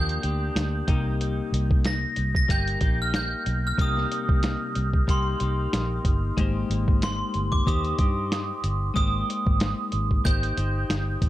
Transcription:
Already playing: fingered electric bass D#2, clean electric guitar F3 A#3 D4 G4, glockenspiel G6
0.09 closed hi-hat
0.23 fingered electric bass D2, clean electric guitar A#3 D4 G4, closed hi-hat
0.56 fingered electric bass D2, snare, closed hi-hat
0.88 fingered electric bass C2, clean electric guitar C3 G3 A#3 D#4 G4, kick, closed hi-hat
1.21 closed hi-hat
1.53 fingered electric bass C2, closed hi-hat
1.71 kick
1.84 glockenspiel A#6, snare, closed hi-hat
2.16 fingered electric bass C2, closed hi-hat
2.35 glockenspiel A#6, kick
2.48 fingered electric bass G1, clean electric guitar G3 A#3 D#4 G4, glockenspiel G6, kick, closed hi-hat
2.67 closed hi-hat
2.81 fingered electric bass A#1, clean electric guitar A#3 D#4 G4, kick, closed hi-hat
3.02 glockenspiel F6
3.14 glockenspiel G6, snare, closed hi-hat
3.46 fingered electric bass B1, closed hi-hat
3.67 glockenspiel F6
3.78 fingered electric bass C2, clean electric guitar C3 G3 A#3 D#4 G4, glockenspiel D#6, kick, closed hi-hat
3.97 snare
4.12 closed hi-hat
4.29 fingered electric bass C2, kick
4.43 snare, closed hi-hat
4.75 fingered electric bass C2, closed hi-hat
4.94 kick
5.07 fingered electric bass C2, clean electric guitar G3 A#3 D#4 G4, glockenspiel C6, kick, closed hi-hat
5.40 fingered electric bass C2, clean electric guitar A#3 D#4 G4, closed hi-hat
5.73 fingered electric bass A#1, snare, closed hi-hat
6.05 fingered electric bass G1, kick, closed hi-hat
6.37 fingered electric bass G#1, clean electric guitar G#3 A#3 D#4 G4 C5, kick, closed hi-hat
6.70 fingered electric bass G#1, closed hi-hat
6.88 kick
7.02 glockenspiel C6, snare, closed hi-hat
7.34 fingered electric bass G1, closed hi-hat
7.52 glockenspiel D6, kick
7.66 fingered electric bass D#2, clean electric guitar A#3 D#4 G4 C5, glockenspiel D#6, kick, closed hi-hat
7.85 closed hi-hat
7.98 fingered electric bass G2, clean electric guitar D#4 G4 C5, kick, closed hi-hat
8.32 snare, closed hi-hat
8.64 fingered electric bass G1, closed hi-hat
8.94 fingered electric bass G#1, clean electric guitar G#3 A#3 D#4 G4 C5, glockenspiel D#6, kick, closed hi-hat
9.30 closed hi-hat
9.47 fingered electric bass G#1, kick
9.60 snare, closed hi-hat
9.92 fingered electric bass G#1, closed hi-hat
10.11 kick
10.24 fingered electric bass G#1, clean electric guitar A#3 D#4 G4 C5, glockenspiel G6, kick, closed hi-hat
10.43 closed hi-hat
10.57 fingered electric bass G1, clean electric guitar D#4 G4 C5, closed hi-hat
10.89 fingered electric bass G1, snare, closed hi-hat
11.22 fingered electric bass A1, kick, closed hi-hat

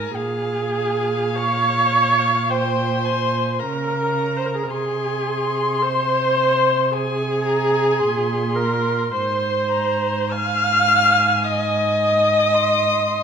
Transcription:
Already playing: cello G#2, viola A#4, violin G#5 A#5
0.14 cello A#2, viola G#4, violin F5 G#5
0.75 violin F5
1.36 viola C#5, violin C#6
2.50 viola C5, violin G5 C6
3.05 violin G#5
3.59 cello C#3, viola A#4, violin A#5
4.37 viola C5
4.46 viola A#4
4.55 viola G#4
4.63 viola A#4
4.70 cello C3, viola G#4, violin G#5 C6
5.82 viola C5, violin C6
6.92 viola G#4, violin G#5
7.44 violin A#5
7.99 cello A#2, violin C6
8.56 viola A#4, violin A#5
9.11 cello G#2, viola C5, violin C6
9.71 violin A#5
10.30 viola F5, violin G#5 F6
11.44 viola D#5, violin D#6
12.54 violin C6
13.08 violin C6

